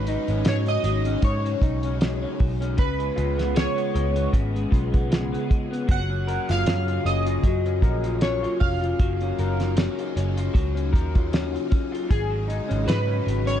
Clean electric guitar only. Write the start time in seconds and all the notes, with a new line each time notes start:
Already playing: G#2 F#3
0.08 D#4
0.30 C#4
0.47 F#3
0.67 C#4
0.85 F#3
1.06 C#4
1.24 G#2
1.45 F#3
1.62 D#4
1.85 C#4
2.01 F#3
2.22 C#4
2.40 F#3
2.61 C#4
2.77 C#3
2.99 G#3
3.16 F4
3.38 B3
3.54 G#3
3.76 B3
3.94 G#3
4.16 B3
4.33 C#3
4.55 G#3
4.71 F4
4.92 B3
5.10 G#3
5.32 B3
5.49 G#3
5.71 B3
5.88 F#3
6.09 C#4
6.27 A#4
6.49 F4
6.67 C#4
6.88 F4
7.06 C#4
7.26 F4
7.45 F#3
7.66 C#4
7.82 A#4
8.03 F4
8.22 C#4
8.43 F4
8.60 C#4
8.81 F4
9.00 F#3
9.22 C#4
9.39 A#4
9.60 F4
9.77 C#4
9.99 F4
10.16 C#4
10.37 F4
10.54 F#3
10.75 C#4
10.93 A#4
11.15 F4
11.32 C#4
11.53 F4
11.70 C#4
11.92 F4
12.08 G#2
12.30 F#3
12.48 D#4
12.68 C#4
12.86 F#3
13.07 C#4
13.26 F#3
13.46 C#4